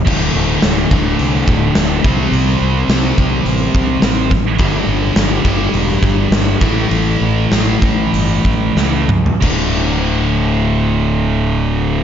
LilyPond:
<<
  \new Staff \with { instrumentName = "Distorted electric guitar" } { \clef bass \time 4/4 \key a \dorian \tempo 4 = 104 <d, a, d>2.~ <d, a, d>8 <c g c'>8~ | <c g c'>2. <c g c'>8 r8 | <g, d g>2.~ <g, d g>8 <a, e a>8~ | <a, e a>2. <a, e a>8 r8 |
<d, a, d>1 | }
  \new Staff \with { instrumentName = "Overdriven electric guitar" } { \clef bass \time 4/4 \key a \dorian <d, a, d>4. <d, a, d>2 <c g c'>8~ | <c g c'>4 <c g c'>2~ <c g c'>8 r8 | <g, d g>4. <g, d g>2 <a, e a>8~ | <a, e a>4 <a, e a>2~ <a, e a>8 r8 |
<d, a, d>1 | }
  \new Staff \with { instrumentName = "Fingered electric bass" } { \clef bass \time 4/4 \key a \dorian d,,8 d,,8 d,,8 d,,8 c,8 d,,8 d,,8 c,8 | c,8 c,8 c,8 c,8 a,,8 c,8 a,,4 | g,,8 g,,8 g,,8 g,,8 e,,8 g,,8 g,,8 a,,8 | a,,8 a,,8 a,,8 a,,8 g,,8 a,,8 cis,4 |
d,,1 | }
  \new DrumStaff \with { instrumentName = "Drums" } \drummode { \time 4/4 <cymc bd>4 <hho sn>8 bd8 hho8 bd8 <hho sn>8 bd8 | hho4 <hho sn>8 bd8 hho8 bd8 <hho sn>8 bd8 | <hho bd>4 <hho sn>8 bd8 hho8 bd8 <hho sn>8 bd8 | hho4 <hho sn>8 bd8 hho8 bd8 sn8 toml16 tomfh16 |
<cymc bd>4 r4 r4 r4 | }
>>